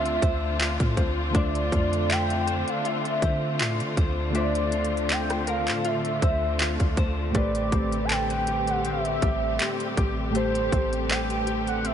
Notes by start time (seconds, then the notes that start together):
Already playing: D2 D3 A3 C4 D4 F4 C5 E5
0.06 closed hi-hat
0.22 D2 C5, kick, closed hi-hat
0.60 F4, clap, closed hi-hat
0.80 A2, kick, closed hi-hat
0.97 D2 C5, kick, closed hi-hat
1.30 D3 A3
1.35 D2 D4 F4 C5 D5 E5, kick, closed hi-hat
1.39 D5
1.55 closed hi-hat
1.72 F2 F4, kick, closed hi-hat
1.93 closed hi-hat
2.10 E5 G5, clap, closed hi-hat
2.30 closed hi-hat
2.47 C5, closed hi-hat
2.68 F5, closed hi-hat
2.85 F4 E5, closed hi-hat
3.05 closed hi-hat
3.22 D3 C5, kick, closed hi-hat
3.60 A2 F4, clap, closed hi-hat
3.80 D3, closed hi-hat
3.97 D2 C5, kick, closed hi-hat
4.30 D3 A3
4.35 D4 F4 C5 D5 E5, closed hi-hat
4.39 D5
4.55 closed hi-hat
4.72 F4, closed hi-hat
4.85 closed hi-hat
4.97 closed hi-hat
5.09 G5, clap, closed hi-hat
5.30 cross-stick, closed hi-hat
5.47 A#4 F5, closed hi-hat
5.67 A2 C5, clap, closed hi-hat
5.85 F4 E5, closed hi-hat
6.05 closed hi-hat
6.22 D2 C5, kick, closed hi-hat
6.60 F4, clap, closed hi-hat
6.80 D2, kick, closed hi-hat
6.97 D2 C5, kick, closed hi-hat
7.30 A2 A3
7.35 A1 G3 A3 C4 G4 B4 D5, kick, closed hi-hat
7.39 C5
7.55 closed hi-hat
7.72 A1 C4, kick, closed hi-hat
7.92 closed hi-hat
8.05 A5
8.10 A4 G5, clap, closed hi-hat
8.30 B4, closed hi-hat
8.47 G4, closed hi-hat
8.67 F#5, closed hi-hat
8.85 C4 E5, closed hi-hat
9.05 closed hi-hat
9.22 A1 G4, kick, closed hi-hat
9.60 C4, clap, closed hi-hat
9.80 closed hi-hat
9.97 A1 G4, kick, closed hi-hat
10.30 A2 A3
10.35 A3 G4 A4 C5, closed hi-hat
10.39 C5
10.55 closed hi-hat
10.72 A1 C4, kick, closed hi-hat
10.93 closed hi-hat
11.10 B4 G5, clap, closed hi-hat
11.30 closed hi-hat
11.47 G4, closed hi-hat
11.67 F#5, closed hi-hat
11.85 C4 E5, closed hi-hat